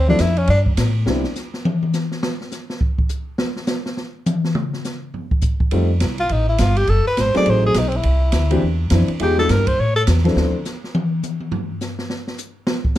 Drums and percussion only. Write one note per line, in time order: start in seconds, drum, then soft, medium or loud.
0.19 kick soft
0.19 snare medium
0.19 hi-hat pedal medium
0.19 ride medium
0.37 ride soft
0.47 kick soft
0.47 ride medium
0.66 kick medium
0.77 snare medium
0.77 hi-hat pedal medium
0.77 ride medium
1.06 snare medium
1.24 snare soft
1.35 snare soft
1.35 hi-hat pedal medium
1.54 snare soft
1.65 high tom medium
1.83 high tom soft
1.93 snare soft
1.93 hi-hat pedal medium
2.11 snare soft
2.23 snare medium
2.41 snare soft
2.51 snare soft
2.51 hi-hat pedal medium
2.70 snare soft
2.81 kick medium
2.98 kick medium
3.09 hi-hat pedal medium
3.38 snare medium
3.56 snare soft
3.67 snare medium
3.67 hi-hat pedal medium
3.86 snare soft
3.97 snare soft
4.26 hi-hat pedal medium
4.26 high tom medium
4.44 snare soft
4.55 mid tom medium
4.73 snare soft
4.84 snare soft
4.84 hi-hat pedal medium
5.14 floor tom soft
5.31 kick medium
5.41 kick medium
5.41 hi-hat pedal medium
5.60 kick medium
5.71 ride medium
6.00 kick soft
6.00 snare medium
6.00 hi-hat pedal soft
6.00 ride medium
6.18 ride soft
6.29 kick soft
6.29 ride medium
6.58 kick soft
6.58 snare medium
6.58 hi-hat pedal medium
6.58 ride medium
6.76 ride soft
6.87 kick soft
6.87 ride medium
7.17 kick soft
7.17 snare medium
7.17 hi-hat pedal medium
7.17 ride medium
7.35 snare soft
7.35 ride soft
7.46 kick soft
7.46 ride medium
7.74 kick soft
7.74 snare medium
7.74 hi-hat pedal medium
7.74 ride medium
7.92 ride soft
8.03 kick soft
8.03 ride medium
8.32 kick soft
8.32 snare medium
8.32 hi-hat pedal medium
8.32 ride medium
8.51 ride medium
8.62 kick soft
8.90 kick soft
8.90 snare medium
8.90 hi-hat pedal medium
8.90 ride medium
9.08 ride soft
9.19 kick soft
9.19 ride medium
9.49 kick soft
9.49 snare medium
9.49 hi-hat pedal medium
9.49 ride medium
9.67 kick medium
9.67 ride medium
9.78 kick soft
10.07 kick soft
10.07 snare medium
10.07 hi-hat pedal medium
10.07 ride medium
10.18 snare soft
10.25 snare soft
10.25 ride soft
10.37 snare medium
10.65 snare soft
10.65 hi-hat pedal medium
10.84 snare soft
10.95 high tom medium
11.23 hi-hat pedal medium
11.23 high tom soft
11.40 high tom soft
11.52 floor tom medium
11.81 snare soft
11.81 hi-hat pedal medium
11.99 snare soft
12.10 snare medium
12.27 snare soft
12.38 hi-hat pedal medium
12.67 snare medium
12.85 kick medium